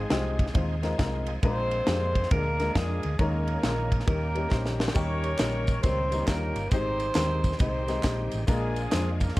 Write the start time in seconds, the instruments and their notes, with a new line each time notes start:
Already playing: grand piano G#2, tonewheel organ F3 G#3 C4 D#4 G#4, horn section G#3 C4 D#4 G#4
0.10 fingered electric bass C2, grand piano G#3 C4 D#4 F4 G4, snare, ride bell
0.39 kick, ride bell
0.47 snare
0.54 fingered electric bass D#2, grand piano G#3 C4 D#4 F4 C5, kick, ride bell
0.83 grand piano G#3 C4 D#4 F4 A#4, snare, ride bell
0.98 fingered electric bass C2, grand piano G#3 C4 D#4 F4 A#4, kick, snare, ride bell
1.26 ride bell
1.42 fingered electric bass A#1, grand piano A#2 G#3 A#3 D4 F4 A#4, tonewheel organ F3 G#3 A#3 C#4 G#4, horn section C4 F4 G#4 C5, kick, ride bell
1.47 tonewheel organ D4
1.71 ride bell
1.86 fingered electric bass F2, grand piano G#3 A#3 D4 F4 G4, snare, ride bell
2.15 kick, ride bell
2.23 snare
2.31 fingered electric bass D2, grand piano G#3 A#3 D4 F4 G#4, horn section A#3 D4 F4 A#4, kick, ride bell
2.59 grand piano G#3 A#3 D4 F4 A#4, snare, ride bell
2.75 fingered electric bass F2, grand piano G#3 A#3 D4 F4 A#4, horn section G#3 D4 F4 G#4, kick, snare, ride bell
3.03 fingered electric bass D2, ride bell
3.19 fingered electric bass D#2, tonewheel organ D#3 G#3 A#3 C#4 G4, grand piano D#3 G#3 A#3 C#4 D#4 A#4, horn section A#3 C#4 A#4, kick, ride bell
3.25 tonewheel organ G#4
3.47 ride bell
3.63 fingered electric bass A#1, grand piano G#3 A#3 C#4 D#4 F4, snare, ride bell
3.92 kick, ride bell
4.00 snare
4.06 fingered electric bass D#2, grand piano D#3 G3 A#3 C#4 D#4 A#4, tonewheel organ D#3 G3 A#3 C#4 G4, horn section A#3 C#4 G4 A#4, kick, ride bell
4.35 grand piano G3 A#3 C#4 D#4 A#4, ride bell
4.51 fingered electric bass A#1, grand piano G3 A#3 C#4 D#4 C5, kick, snare
4.66 snare
4.80 snare
4.88 snare
4.94 fingered electric bass D#2, grand piano G3 A#3 C#4 D#4 G4, horn section C#4 G4 A#4 C#5, kick, tambourine, splash
5.23 ride bell, tambourine
5.39 fingered electric bass A#1, grand piano G3 A#3 C#4 D#4 A#4, snare, clap, ride bell, tambourine
5.67 kick, ride bell, tambourine
5.81 fingered electric bass C#2, grand piano D#3 G3 A#3 C#4 D#4 A#4, horn section C4 G4 C5, kick, ride bell, tambourine
6.11 grand piano G3 A#3 C#4 D#4 A#4, ride bell, tambourine
6.26 fingered electric bass D#2, grand piano G3 A#3 C#4 D#4 F4, horn section A#3 C#4 G4 A#4, kick, snare, clap, ride bell, tambourine
6.56 fingered electric bass G1, ride bell, tambourine
6.70 fingered electric bass G#1, grand piano G#2 G#3 C4 D#4 G4 C5, tonewheel organ D#3 G3 G#3 C4 G4, horn section C4 D#4 G4 C5, kick, ride bell, tambourine
7.00 ride bell, tambourine
7.15 fingered electric bass D#2, grand piano G#3 C4 D#4 G4 A#4, snare, clap, ride bell, tambourine
7.44 kick, ride bell, tambourine
7.52 snare
7.59 fingered electric bass C2, grand piano G#3 C4 D#4 G4 D#5, horn section C4 D#4 G4 C5, kick, ride bell, tambourine
7.88 grand piano G#3 C4 D#4 G4 A#4, snare, ride bell, tambourine
8.02 fingered electric bass A#1, grand piano G#3 C4 D#4 G4 C5, kick, snare, clap, ride bell, tambourine
8.31 fingered electric bass A1, ride bell, tambourine
8.47 fingered electric bass A#1, grand piano A#2 G#3 A#3 D4 F4 A#4, tonewheel organ F3 G#3 A#3 D4 G#4, horn section G#3 D4 F4 G#4, kick, ride bell, tambourine
8.76 ride bell, tambourine
8.92 fingered electric bass F2, grand piano G#3 A#3 D4 F4 C5, snare, clap, ride bell, tambourine
9.20 horn section A#3 A#4, kick, ride bell, tambourine
9.28 snare
9.36 grand piano G#3 A#3, ride bell, tambourine